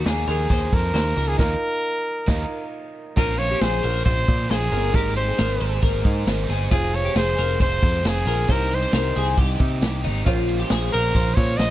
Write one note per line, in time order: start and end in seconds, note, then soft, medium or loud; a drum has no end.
0.00 0.27 D#3 medium
0.00 1.35 D#4 medium
0.00 1.35 F4 medium
0.00 1.36 A#4 medium
0.05 0.24 D#2 loud
0.05 0.28 F3 loud
0.05 0.26 A#3 loud
0.05 0.25 D#4 medium
0.05 0.29 G#4 medium
0.05 snare loud
0.05 closed hi-hat medium
0.26 0.46 D#2 loud
0.26 0.49 F3 soft
0.26 0.50 A#3 medium
0.26 0.50 D#4 medium
0.26 0.75 G#4 medium
0.26 0.49 A#4 medium
0.26 closed hi-hat medium
0.50 0.68 D#2 loud
0.50 0.72 D#3 medium
0.50 0.73 F3 medium
0.50 0.72 A#3 medium
0.50 0.70 D#4 medium
0.50 0.92 C5 medium
0.50 kick medium
0.50 closed hi-hat medium
0.71 0.91 F2 medium
0.71 0.93 F3 soft
0.71 0.94 A#3 soft
0.71 0.94 D#4 medium
0.71 1.30 A#4 loud
0.71 kick medium
0.71 closed hi-hat medium
0.94 1.13 D#2 medium
0.94 1.17 D#3 medium
0.94 1.17 F3 medium
0.94 1.16 A#3 medium
0.94 1.14 D#4 medium
0.94 1.17 C5 medium
0.94 snare loud
0.94 closed hi-hat medium
1.15 1.35 C#2 loud
1.15 1.37 F3 soft
1.15 1.38 A#3 medium
1.15 1.38 D#4 medium
1.15 1.39 A#4 medium
1.15 open hi-hat medium
1.28 1.39 G#4 medium
1.37 1.54 D#2 loud
1.37 1.53 D#3 loud
1.37 1.54 F3 loud
1.37 1.54 A#3 medium
1.37 1.53 D#4 loud
1.37 1.54 D#4 medium
1.37 1.54 F4 loud
1.37 1.55 A#4 loud
1.37 2.69 A#4 loud
1.37 kick loud
1.37 snare loud
1.37 crash medium
2.27 2.43 D#2 loud
2.27 2.42 D#3 loud
2.27 2.43 F3 loud
2.27 2.44 A#3 medium
2.27 2.43 D#4 loud
2.27 2.44 D#4 loud
2.27 2.43 F4 medium
2.27 2.44 A#4 loud
2.27 kick loud
2.27 snare medium
2.27 crash medium
3.16 3.53 A#1 loud
3.16 3.39 A#2 medium
3.16 4.93 C#3 medium
3.16 3.39 F3 medium
3.16 3.39 A#3 medium
3.16 6.69 A#3 medium
3.16 4.69 C4 medium
3.16 4.69 C#4 medium
3.16 3.40 C#4 medium
3.16 4.70 F4 medium
3.16 3.49 F4 loud
3.16 3.38 F4 medium
3.16 3.40 A#4 loud
3.16 4.70 A#4 medium
3.16 3.37 C5 medium
3.16 8.46 C5 medium
3.16 kick medium
3.16 crash medium
3.38 3.60 A#3 soft
3.38 3.61 C#4 soft
3.38 3.62 F4 medium
3.38 3.61 C5 medium
3.38 3.63 C#5 loud
3.38 ride medium
3.51 3.62 G4 medium
3.61 3.80 A#1 loud
3.61 3.84 A#3 medium
3.61 3.84 C#4 medium
3.61 3.83 F4 medium
3.61 3.84 G#4 medium
3.61 4.04 C5 loud
3.61 3.82 C5 medium
3.61 snare loud
3.61 ride medium
3.83 4.02 A#1 loud
3.83 4.05 A#3 soft
3.83 4.05 C#4 soft
3.83 4.05 F4 medium
3.83 4.05 A#4 medium
3.83 4.06 C5 medium
3.83 ride medium
4.05 4.24 A#1 loud
4.05 4.28 A#2 medium
4.05 4.28 F3 medium
4.05 4.28 A#3 medium
4.05 4.28 C#4 medium
4.05 4.27 F4 medium
4.05 4.52 C5 loud
4.05 4.47 C5 medium
4.05 4.26 C5 medium
4.05 kick medium
4.05 ride medium
4.27 4.46 A#2 loud
4.27 4.48 A#3 soft
4.27 4.49 C#4 soft
4.27 4.50 F4 soft
4.27 4.50 C5 medium
4.27 kick loud
4.27 ride medium
4.49 4.69 A#1 medium
4.49 4.72 A#3 medium
4.49 4.72 C#4 medium
4.49 4.72 F4 medium
4.49 4.97 G#4 medium
4.49 4.72 C5 medium
4.49 4.71 C5 medium
4.49 snare loud
4.49 ride medium
4.71 4.90 G1 loud
4.71 4.94 A#3 soft
4.71 4.90 C4 medium
4.71 4.94 C#4 soft
4.71 4.95 C#4 medium
4.71 4.94 F4 soft
4.71 4.95 F4 medium
4.71 4.94 A#4 medium
4.71 4.92 A#4 medium
4.71 4.94 C5 medium
4.71 open hi-hat medium
4.71 ride medium
4.92 5.31 G#1 loud
4.92 5.17 G#3 medium
4.92 6.70 G#3 medium
4.92 5.17 A#3 medium
4.92 6.67 C4 medium
4.92 6.67 D#4 medium
4.92 5.17 D#4 medium
4.92 5.28 G4 loud
4.92 6.68 G#4 medium
4.92 6.68 A#4 medium
4.92 5.16 A#4 loud
4.92 kick loud
4.92 hi-hat pedal medium
4.92 ride medium
4.96 5.16 G#4 medium
4.96 5.15 C5 medium
5.16 5.38 D#4 soft
5.16 5.39 G#4 soft
5.16 5.39 C5 soft
5.16 5.79 C5 medium
5.16 ride medium
5.28 5.39 G#4 medium
5.38 5.57 G#1 medium
5.38 5.61 A#3 medium
5.38 5.61 D#4 medium
5.38 5.61 G#4 medium
5.38 5.60 A#4 medium
5.38 5.59 C5 medium
5.38 snare loud
5.38 ride medium
5.60 5.79 G#1 medium
5.60 5.82 D#4 soft
5.60 5.82 G#4 medium
5.60 5.83 C5 medium
5.60 5.82 C5 medium
5.60 ride medium
5.81 6.01 G#1 loud
5.81 6.04 G#3 medium
5.81 6.05 A#3 medium
5.81 6.05 D#4 medium
5.81 6.04 G#4 loud
5.81 6.45 A#4 medium
5.81 6.03 C5 loud
5.81 kick medium
5.81 ride medium
6.04 6.23 G#2 loud
6.04 6.26 D#4 medium
6.04 6.27 G#4 medium
6.04 6.27 C5 medium
6.04 kick loud
6.04 ride medium
6.26 6.45 G#1 loud
6.26 6.49 A#3 medium
6.26 6.49 D#4 medium
6.26 6.48 G#4 medium
6.26 6.46 C5 medium
6.26 snare loud
6.26 ride medium
6.47 6.67 G1 medium
6.47 6.71 D#4 medium
6.47 6.71 G#4 medium
6.47 6.71 C5 medium
6.47 open hi-hat medium
6.47 ride medium
6.70 7.08 F1 loud
6.70 6.93 F3 medium
6.70 8.47 F3 medium
6.70 8.45 C4 medium
6.70 6.93 C4 medium
6.70 8.45 F4 medium
6.70 7.03 F4 loud
6.70 6.92 F4 medium
6.70 8.47 G#4 medium
6.70 8.45 G#4 medium
6.70 6.91 G#4 medium
6.70 6.97 G#4 loud
6.70 8.46 C5 medium
6.70 kick loud
6.70 hi-hat pedal medium
6.70 ride medium
6.92 7.14 C4 soft
6.92 7.15 F4 soft
6.92 7.15 G#4 medium
6.92 7.17 C#5 loud
6.92 ride medium
7.05 7.16 G4 medium
7.14 7.34 F1 medium
7.14 7.37 F3 medium
7.14 7.38 C4 medium
7.14 7.37 F4 medium
7.14 7.38 G#4 medium
7.14 7.35 G#4 medium
7.14 7.58 C5 loud
7.14 snare loud
7.14 ride medium
7.36 7.56 F1 loud
7.36 7.58 C4 soft
7.36 7.59 F4 medium
7.36 7.59 G#4 medium
7.36 7.60 A#4 medium
7.36 ride medium
7.59 7.79 F1 loud
7.59 7.82 F3 medium
7.59 7.82 C4 medium
7.59 7.82 F4 medium
7.59 7.81 G#4 medium
7.59 8.02 C5 medium
7.59 8.09 C5 loud
7.59 kick medium
7.59 ride medium
7.82 8.01 F2 medium
7.82 8.02 C4 soft
7.82 8.04 F4 soft
7.82 8.04 G#4 medium
7.82 kick loud
7.82 ride medium
8.03 8.22 F1 loud
8.03 8.26 F3 medium
8.03 8.26 C4 medium
8.03 8.26 F4 medium
8.03 8.25 G#4 medium
8.03 8.27 C5 medium
8.03 snare loud
8.03 ride medium
8.07 8.53 G#4 medium
8.26 8.44 A#1 medium
8.26 8.49 C4 soft
8.26 8.49 F4 medium
8.26 8.49 G#4 medium
8.26 8.49 A#4 medium
8.26 open hi-hat medium
8.26 ride medium
8.47 8.85 C2 loud
8.47 8.71 C3 medium
8.47 10.25 C3 medium
8.47 8.72 G3 medium
8.47 10.22 C4 medium
8.47 8.71 C4 medium
8.47 10.22 D#4 medium
8.47 8.70 D#4 medium
8.47 10.23 G4 medium
8.47 8.68 G4 loud
8.47 10.23 C5 medium
8.47 8.81 C5 medium
8.47 kick medium
8.47 hi-hat pedal medium
8.47 ride medium
8.51 10.25 G3 medium
8.51 10.26 D#4 medium
8.51 8.76 A#4 loud
8.69 8.92 C4 soft
8.69 8.93 D#4 soft
8.69 8.92 G4 medium
8.69 ride medium
8.75 9.40 C5 medium
8.83 8.94 C5 medium
8.91 9.11 C2 loud
8.91 9.15 G3 medium
8.91 9.15 C4 medium
8.91 9.15 D#4 medium
8.91 9.13 G4 medium
8.91 9.16 A#4 medium
8.91 snare loud
8.91 ride medium
9.15 9.34 C2 loud
9.15 9.37 C4 soft
9.15 9.37 D#4 medium
9.15 9.37 G4 medium
9.15 9.38 G#4 medium
9.15 ride medium
9.36 9.56 C2 loud
9.36 9.59 C3 medium
9.36 9.60 G3 medium
9.36 9.60 C4 medium
9.36 9.60 D#4 loud
9.36 9.58 G4 medium
9.36 10.01 G4 medium
9.36 kick medium
9.36 ride medium
9.59 9.84 C3 medium
9.59 9.81 C4 medium
9.59 9.81 D#4 medium
9.59 9.82 G4 medium
9.59 kick loud
9.59 ride medium
9.81 10.06 C2 medium
9.81 10.04 G3 medium
9.81 10.04 C4 medium
9.81 10.03 D#4 medium
9.81 10.02 G4 medium
9.81 snare loud
9.81 ride medium
10.03 10.23 G#1 medium
10.03 10.25 C4 medium
10.03 10.25 D#4 medium
10.03 10.26 D#4 medium
10.03 10.26 G4 medium
10.03 open hi-hat medium
10.03 ride medium
10.24 10.63 A#1 loud
10.24 10.47 A#2 medium
10.24 11.70 C#3 medium
10.24 10.48 F3 medium
10.24 10.48 A#3 loud
10.24 11.70 A#3 medium
10.24 11.70 C#4 medium
10.24 10.48 C#4 medium
10.24 11.70 F4 medium
10.24 10.58 F4 loud
10.24 10.47 F4 medium
10.24 11.70 A#4 medium
10.24 10.46 C5 loud
10.24 11.70 C5 medium
10.24 kick medium
10.24 hi-hat pedal medium
10.24 ride medium
10.47 10.68 A#3 soft
10.47 10.69 C#4 medium
10.47 10.70 F4 medium
10.47 10.70 C5 medium
10.47 ride medium
10.59 10.70 G4 medium
10.69 10.89 A#1 loud
10.69 10.92 A#3 medium
10.69 10.92 C#4 medium
10.69 10.91 F4 medium
10.69 10.93 G#4 medium
10.69 10.90 C5 medium
10.69 snare loud
10.69 ride medium
10.91 11.12 A#1 loud
10.91 11.13 A#3 soft
10.91 11.14 C#4 medium
10.91 11.13 F4 soft
10.91 11.36 A#4 medium
10.91 11.15 A#4 medium
10.91 11.14 C5 medium
10.91 ride medium
11.13 11.33 A#1 loud
11.13 11.36 A#2 medium
11.13 11.37 F3 medium
11.13 11.37 A#3 medium
11.13 11.36 C#4 medium
11.13 11.36 F4 medium
11.13 11.34 C5 medium
11.13 11.57 C5 medium
11.13 kick medium
11.13 ride medium
11.35 11.55 A#2 medium
11.35 11.56 A#3 soft
11.35 11.57 C#4 soft
11.35 11.59 F4 medium
11.35 11.58 C5 medium
11.35 11.59 C#5 medium
11.35 kick medium
11.35 ride medium
11.57 11.70 A#1 medium
11.57 11.70 A#3 medium
11.57 11.70 C#4 medium
11.57 11.70 F4 medium
11.57 11.70 C5 medium
11.57 11.70 D#5 loud
11.57 snare loud
11.57 ride medium